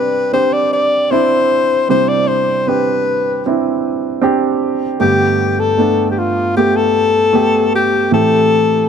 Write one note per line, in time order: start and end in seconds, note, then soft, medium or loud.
0.00 1.85 C3 soft
0.00 1.84 G3 soft
0.00 0.33 C4 medium
0.00 0.33 D4 medium
0.00 0.34 G4 medium
0.00 0.33 B4 medium
0.33 1.07 C4 medium
0.33 1.07 D4 soft
0.33 1.07 G4 medium
0.33 0.55 C5 medium
0.53 0.72 D5 medium
0.73 1.13 D5 medium
1.11 1.85 C4 medium
1.11 1.85 D4 medium
1.11 1.86 E4 medium
1.11 1.89 C5 medium
1.89 4.97 C3 soft
1.89 4.97 G3 soft
1.89 2.63 C4 medium
1.89 2.63 D4 medium
1.89 2.63 E4 medium
1.89 2.10 C5 medium
2.09 2.29 D5 medium
2.28 2.70 C5 medium
2.67 3.41 C4 medium
2.67 3.41 D4 soft
2.67 3.42 G4 medium
2.67 3.45 B4 medium
3.46 4.19 C4 medium
3.46 4.20 D4 soft
3.46 4.20 E4 medium
4.22 4.96 C4 medium
4.22 4.96 D4 medium
4.22 4.97 G4 medium
5.00 8.08 G2 soft
5.00 8.08 D3 soft
5.00 5.74 A3 medium
5.00 5.75 B3 medium
5.00 5.61 G4 medium
5.00 5.75 G4 medium
5.60 6.11 A4 medium
5.78 6.52 A3 medium
5.78 6.52 B3 medium
5.78 6.53 D4 medium
6.12 6.20 G4 soft
6.19 6.56 F4 medium
6.57 7.31 A3 medium
6.57 7.31 B3 medium
6.57 6.78 G4 medium
6.57 7.31 G4 medium
6.76 7.73 A4 medium
7.33 8.08 A3 medium
7.33 8.08 B3 medium
7.33 8.09 G4 medium
7.75 8.11 G4 medium
8.11 8.89 A2 soft
8.11 8.89 E3 soft
8.11 8.86 A3 medium
8.11 8.86 C4 soft
8.11 8.87 G4 medium
8.11 8.89 A4 medium